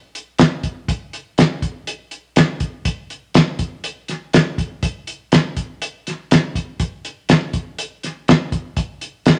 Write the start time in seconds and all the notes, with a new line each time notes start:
0.15 closed hi-hat
0.39 snare, closed hi-hat
0.63 kick, closed hi-hat
0.88 kick, closed hi-hat
1.13 closed hi-hat
1.38 snare, closed hi-hat
1.62 kick, closed hi-hat
1.87 closed hi-hat
2.11 closed hi-hat
2.36 snare, closed hi-hat
2.60 kick, closed hi-hat
2.85 kick, closed hi-hat
3.10 closed hi-hat
3.34 snare, closed hi-hat
3.59 kick, closed hi-hat
3.84 closed hi-hat
4.08 snare, closed hi-hat
4.33 snare, closed hi-hat
4.58 kick, closed hi-hat
4.83 kick, closed hi-hat
5.07 closed hi-hat
5.32 snare, closed hi-hat
5.57 kick, closed hi-hat
5.82 closed hi-hat
6.07 snare, closed hi-hat
6.31 snare, closed hi-hat
6.55 kick, closed hi-hat
6.80 kick, closed hi-hat
7.05 closed hi-hat
7.29 snare, closed hi-hat
7.53 kick, closed hi-hat
7.78 closed hi-hat
8.03 snare, closed hi-hat
8.28 snare, closed hi-hat
8.52 kick, closed hi-hat
8.77 kick, closed hi-hat
9.01 closed hi-hat
9.26 snare, closed hi-hat